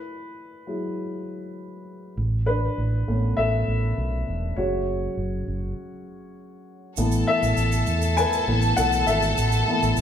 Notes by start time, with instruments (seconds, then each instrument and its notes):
Already playing: upright piano E4 B4
0.67 upright piano F#3 G#3 E4
2.17 fingered electric bass A1
2.46 upright piano D4 B4
2.78 fingered electric bass A1
3.07 fingered electric bass A1, upright piano A3 B3 C#4
3.37 fingered electric bass A1, upright piano A4 E5
3.68 fingered electric bass A1
3.98 fingered electric bass B1
4.28 fingered electric bass E1
4.56 fingered electric bass F#1, upright piano F#3 G#3 C#4 F#4 C#5
5.17 fingered electric bass F#1
5.48 fingered electric bass F#1
6.97 fingered electric bass A1, upright piano E3 A3 B3, violin section A4 A5, shaker
7.12 shaker
7.27 upright piano A4 E5
7.42 fingered electric bass A1, shaker
7.57 fingered electric bass A1, shaker
7.72 shaker
7.87 fingered electric bass E2, shaker
8.02 shaker
8.17 upright piano B4 G#5, shaker
8.33 shaker
8.47 fingered electric bass A1, upright piano E3 A3 B3
8.62 shaker
8.77 fingered electric bass B1, upright piano A4 F#5, shaker
8.92 shaker
9.07 fingered electric bass G#1, upright piano A4 E5, shaker
9.22 shaker
9.38 fingered electric bass A1, shaker
9.52 shaker
9.68 upright piano E3 A3 B3
9.82 fingered electric bass A1, shaker
9.97 fingered electric bass A1, shaker